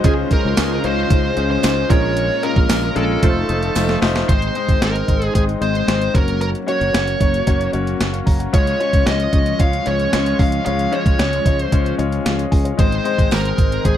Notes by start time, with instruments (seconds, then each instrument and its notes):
Already playing: string machine G#3 C5
0.04 fretless electric bass C#2, grand piano C#3 G#3 C#4 F4 C5, string machine C#3 D#4 F4, analog polysynth C#4 F4 G#4, lead electric guitar G#4, kick, closed hi-hat
0.31 grand piano G#3 C#4 F4 C5, lead electric guitar A#4, kick, closed hi-hat
0.45 fretless electric bass C#2
0.57 fretless electric bass C#2, grand piano G#3 C#4 F4 D#5, snare, closed hi-hat, tambourine
0.84 fretless electric bass C#2, grand piano G#3 C#4 F4 C5, lead electric guitar C5, closed hi-hat
1.10 fretless electric bass C#2, grand piano G#3 C#4 F4 C5, kick, closed hi-hat
1.37 fretless electric bass C#2, grand piano G#3 C#4 F4 C5, closed hi-hat
1.51 lead electric guitar C5
1.63 fretless electric bass C#2, grand piano G#3 C#4 F4 C5, snare, closed hi-hat, tambourine
1.90 fretless electric bass A#1, grand piano A#2 G#3 C#4 F4 A#4, string machine A#3 C#4, analog polysynth C#4 F4 A#4, lead electric guitar C#5, kick, closed hi-hat
2.17 closed hi-hat
2.43 grand piano G#3 C#4 F4 A#4, lead electric guitar A#4, closed hi-hat
2.56 fretless electric bass A#1, kick
2.69 fretless electric bass A#1, grand piano G#3 C#4 F4 A#4, snare, closed hi-hat, tambourine
2.95 fretless electric bass A#1, grand piano G#3 C#4 F4 A#4, lead electric guitar A4, closed hi-hat
3.22 fretless electric bass F1, string machine F3 A3 D#4, grand piano A3 D#4 F4 C5, analog polysynth F4 A4 C5, kick, closed hi-hat
3.49 fretless electric bass F1, grand piano A3 D#4 F4 C5, closed hi-hat
3.63 closed hi-hat
3.75 fretless electric bass F1, grand piano A3 D#4 F4 C5, snare, closed hi-hat, tambourine
3.89 snare
4.02 fretless electric bass F1, grand piano A3 D#4 F4 C5, snare, open hi-hat
4.16 snare
4.28 fretless electric bass G#1, grand piano G#2 G#3 C4 D#4 C5, string machine G#3 C4 D#4, lead electric guitar C5, kick, closed hi-hat
4.42 closed hi-hat
4.55 grand piano G#3 C4 D#4 C5, closed hi-hat
4.68 fretless electric bass G#1, kick, closed hi-hat
4.81 fretless electric bass G#1, grand piano G#3 C4 D#4 D#5, lead electric guitar A#4, snare, closed hi-hat
4.96 closed hi-hat
5.08 fretless electric bass G#1, grand piano G#3 C4 D#4 C5, kick, closed hi-hat
5.22 closed hi-hat
5.34 fretless electric bass G#1, grand piano G#3 C4 D#4 C5, lead electric guitar G#4, kick, closed hi-hat
5.49 closed hi-hat
5.61 fretless electric bass G#1, grand piano G#3 C4 D#4 C5, lead electric guitar C5, closed hi-hat
5.75 closed hi-hat
5.87 fretless electric bass G#1, grand piano G#3 C4 D#4 C5, snare, closed hi-hat
6.02 closed hi-hat
6.13 fretless electric bass F#1, string machine F#3 A#3 C#4, grand piano A#3 C#4 F#4 C#5, lead electric guitar A#4, kick, closed hi-hat
6.28 closed hi-hat
6.41 lead electric guitar A#4, closed hi-hat
6.55 closed hi-hat
6.67 grand piano A#3 C#4 F#4 C#5, lead electric guitar C#5, closed hi-hat
6.81 fretless electric bass F#1, closed hi-hat
6.93 fretless electric bass F#1, grand piano A#3 C#4 F#4 C#5, snare, closed hi-hat
7.08 closed hi-hat
7.20 fretless electric bass F#1, grand piano A#3 C#4 F#4 C#5, kick, closed hi-hat
7.34 closed hi-hat
7.47 fretless electric bass F#1, grand piano A#3 C#4 F#4 C#5, kick, closed hi-hat
7.61 closed hi-hat
7.73 fretless electric bass F#1, grand piano A#3 C#4 F#4 C#5, closed hi-hat
7.87 closed hi-hat
8.01 fretless electric bass F#1, snare, closed hi-hat
8.13 grand piano F5 C#6, closed hi-hat
8.26 fretless electric bass F#1, grand piano C#5 A#5, kick, open hi-hat
8.40 grand piano A#4 F#5, closed hi-hat
8.53 fretless electric bass C#2, grand piano C#3 G#3 C#4 F4 C#5, string machine F3 G#3, lead electric guitar C#5, kick, closed hi-hat
8.67 closed hi-hat
8.79 grand piano G#3 C#4 F4 C#5, closed hi-hat
8.93 fretless electric bass C#2, kick, closed hi-hat
9.06 fretless electric bass C#2, grand piano G#3 C#4 F4 C#5, lead electric guitar D#5, snare, closed hi-hat
9.20 closed hi-hat
9.33 fretless electric bass C#2, grand piano G#3 C#4 F4 C#5, kick, closed hi-hat
9.46 closed hi-hat
9.59 fretless electric bass C#2, grand piano G#3 C#4 F4 C#5, lead electric guitar F5, kick, closed hi-hat
9.73 closed hi-hat
9.86 fretless electric bass C#2, grand piano G#3 C#4 F4 C#5, lead electric guitar C#5, closed hi-hat
10.00 closed hi-hat
10.12 fretless electric bass C#2, grand piano G#3 C#4 F4 C#5, snare, closed hi-hat
10.26 closed hi-hat
10.39 fretless electric bass C#2, grand piano G#3 C#4 F4 C#5, lead electric guitar F5, kick, open hi-hat
10.52 closed hi-hat
10.65 fretless electric bass C#2, grand piano C#3 G#3 C#4 F4 C#5, lead electric guitar F5, closed hi-hat
10.79 closed hi-hat
10.92 grand piano G#3 C#4 F4 C#5, lead electric guitar C#5, closed hi-hat
11.06 fretless electric bass C#2, kick, closed hi-hat
11.19 fretless electric bass C#2, grand piano G#3 C#4 F4 C#5, snare, closed hi-hat
11.33 closed hi-hat
11.46 fretless electric bass C#2, grand piano G#3 C#4 F4 C#5, kick, closed hi-hat
11.59 lead electric guitar C5, closed hi-hat
11.72 fretless electric bass C#2, grand piano G#3 C#4 F4 C#5, kick, closed hi-hat
11.86 closed hi-hat
11.98 fretless electric bass C#2, grand piano G#3 C#4 F4 C#5, closed hi-hat
12.12 closed hi-hat
12.25 fretless electric bass C#2, grand piano G#4 F5, snare, closed hi-hat
12.38 grand piano D#5, closed hi-hat
12.51 fretless electric bass C#2, grand piano G#5, kick, open hi-hat
12.65 grand piano F4 C#5, closed hi-hat
12.77 fretless electric bass G#1, grand piano G#2 G#3 C4 D#4 C5, string machine D#3 G#3 C4, lead electric guitar C5, kick, closed hi-hat
12.92 closed hi-hat
13.04 grand piano G#3 C4 D#4 C5, closed hi-hat
13.18 fretless electric bass G#1, kick, closed hi-hat
13.30 fretless electric bass G#1, grand piano G#3 C4 D#4 C5, lead electric guitar A#4, snare, closed hi-hat, tambourine
13.45 closed hi-hat
13.57 fretless electric bass G#1, grand piano G#3 C4 D#4 C5, kick, closed hi-hat
13.72 closed hi-hat
13.84 fretless electric bass G#1, grand piano G#3 C4 D#4 C5, lead electric guitar G#4, kick, closed hi-hat